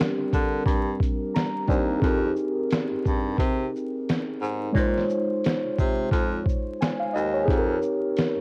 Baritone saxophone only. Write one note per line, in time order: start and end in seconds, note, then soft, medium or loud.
0.18 0.24 D3 soft
0.33 0.62 D3 loud
0.66 0.95 G2 medium
1.69 1.98 D#2 medium
2.02 2.32 F2 medium
2.91 2.96 G2 soft
3.06 3.35 G2 medium
3.38 3.68 C3 loud
4.41 4.71 G#2 medium
4.76 5.05 A#2 loud
5.64 5.70 C3 soft
5.79 6.08 C3 medium
6.12 6.41 F2 loud
7.15 7.50 D#2 medium
7.49 7.78 F2 loud
8.36 8.41 G2 soft